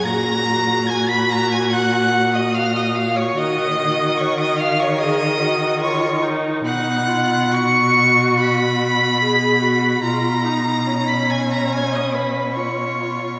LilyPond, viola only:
\new Staff \with { instrumentName = "Viola" } { \time 4/4 \key fis \major \tempo 4 = 72 fis'1 | fis'8 fis'4. gis'8 fis'8 eis'8 dis'8 | dis'8 eis'8 fis'2 gis'8 fis'8 | eis'8 dis'8 cis'2 eis'4 | }